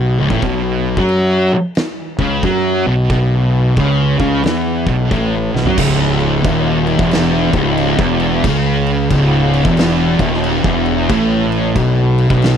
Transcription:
0.00 0.16 B1 loud
0.00 0.18 B2 loud
0.19 0.30 C#1 medium
0.19 0.30 C#2 loud
0.30 0.42 A1 medium
0.30 0.42 A2 loud
0.30 kick loud
0.42 0.94 B1 medium
0.42 0.98 B2 loud
0.42 kick loud
0.42 crash medium
0.97 1.49 F#2 medium
0.97 1.52 F#3 loud
0.97 kick loud
1.09 crash medium
1.52 muted fingered electric bass stroke soft
1.52 muted distorted electric guitar stroke medium
1.75 snare loud
1.75 crash medium
2.19 2.42 C#2 medium
2.19 2.43 C#3 loud
2.19 kick loud
2.43 2.83 F#2 medium
2.43 2.86 F#3 loud
2.43 kick loud
2.43 crash medium
2.86 3.74 B1 loud
2.86 3.77 B2 loud
3.10 kick loud
3.10 crash medium
3.76 4.17 C#2 loud
3.76 4.19 C#3 loud
3.76 kick loud
3.76 crash medium
4.20 4.43 C#2 medium
4.20 4.43 C#3 loud
4.20 kick loud
4.44 4.84 E2 medium
4.44 4.85 E3 loud
4.44 snare loud
4.44 crash medium
4.87 5.09 B1 loud
4.87 5.11 B2 loud
4.87 kick loud
5.11 5.51 A1 medium
5.11 5.52 A2 loud
5.11 kick loud
5.11 crash medium
5.54 5.65 B1 medium
5.54 5.66 B2 loud
5.54 snare medium
5.65 5.78 F#2 medium
5.65 5.78 F#3 medium
5.65 floor tom medium
5.78 6.41 C#1 loud
5.78 6.44 C#2 loud
5.78 kick loud
5.78 crash loud
5.78 crash medium
6.20 crash medium
6.44 6.95 D#1 loud
6.44 6.99 D#2 loud
6.44 kick loud
6.44 crash medium
6.87 crash medium
6.99 7.50 E1 loud
6.99 7.53 E2 loud
6.99 kick loud
7.11 snare loud
7.11 crash medium
7.53 7.96 C#1 loud
7.53 7.98 C#2 loud
7.53 kick loud
7.53 crash medium
7.77 crash medium
7.99 8.41 E1 loud
7.99 8.44 E2 loud
7.99 kick loud
8.20 crash medium
8.44 9.07 C#2 loud
8.44 9.11 C#3 loud
8.44 kick loud
8.44 crash loud
8.86 crash medium
9.11 9.61 C#1 loud
9.11 9.65 C#2 loud
9.11 kick loud
9.11 crash medium
9.54 crash medium
9.65 10.16 E1 loud
9.65 10.19 E2 loud
9.65 kick loud
9.77 snare loud
9.77 crash loud
10.19 10.61 D#1 loud
10.19 10.64 D#2 loud
10.19 kick loud
10.19 crash medium
10.34 snare soft
10.44 crash medium
10.64 11.07 E1 loud
10.64 11.09 E2 loud
10.64 kick loud
10.86 crash medium
11.10 11.72 A1 loud
11.10 11.76 A2 loud
11.10 kick loud
11.10 crash loud
11.52 crash medium
11.76 12.27 B1 loud
11.76 12.30 B2 loud
11.76 kick loud
11.76 crash medium
12.18 crash medium
12.30 12.57 B1 loud
12.30 12.57 B2 loud
12.30 kick loud
12.42 snare loud
12.42 crash medium

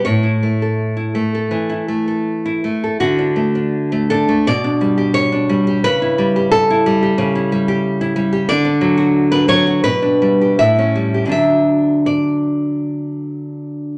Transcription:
0.05 1.49 A2 medium
0.05 2.60 C#5 medium
0.23 0.95 E4 soft
0.43 1.14 A3 soft
0.62 1.33 A4 soft
0.97 1.68 E4 soft
1.15 1.87 A3 soft
1.35 2.06 A4 soft
1.51 2.63 E3 soft
1.70 2.44 E4 soft
1.88 2.63 A3 soft
2.08 2.82 A4 soft
2.46 3.01 E4 soft
2.64 3.00 A3 soft
2.84 3.00 A4 soft
3.00 4.28 D3 medium
3.00 4.07 F#4 medium
3.19 3.54 D4 soft
3.36 3.91 A3 soft
3.55 4.10 D4 soft
3.92 4.27 A3 soft
4.10 4.48 D4 medium
4.10 4.46 A4 medium
4.29 4.47 A3 soft
4.47 5.81 B2 medium
4.47 5.13 D5 loud
4.64 5.31 D4 medium
4.81 5.48 G3 soft
4.98 5.66 G4 medium
5.14 5.82 C#5 medium
5.32 5.85 D4 medium
5.49 5.85 G3 medium
5.67 5.85 G4 medium
5.84 7.17 C#3 medium
5.84 6.51 B4 loud
6.02 6.69 E4 medium
6.18 6.85 G3 medium
6.36 7.01 G4 medium
6.51 8.13 A4 loud
6.70 7.34 E4 medium
6.86 7.51 G3 medium
7.03 7.67 G4 medium
7.18 8.46 C#3 medium
7.35 8.00 E4 medium
7.52 8.15 G3 medium
7.68 8.31 G4 medium
8.01 8.51 E4 medium
8.16 8.50 G3 medium
8.33 8.50 G4 medium
8.49 9.79 D3 medium
8.49 9.30 D5 loud
8.65 9.31 D4 medium
8.81 9.47 F#3 medium
8.97 9.66 F#4 medium
9.32 9.84 D4 medium
9.32 9.48 B4 medium
9.48 9.83 F#3 medium
9.48 9.82 C#5 loud
9.67 9.84 F#4 medium
9.84 10.58 B2 medium
9.84 10.57 B4 loud
10.02 10.60 D4 medium
10.22 10.59 G3 medium
10.41 10.60 G4 medium
10.59 11.27 A2 medium
10.59 11.30 E5 medium
10.79 11.29 C#4 medium
10.95 11.33 G3 soft
11.14 11.33 G4 soft
11.26 13.98 D3 medium
11.26 13.98 F#3 soft
11.26 13.98 D4 soft
11.32 12.04 E5 medium
12.06 13.92 D5 medium

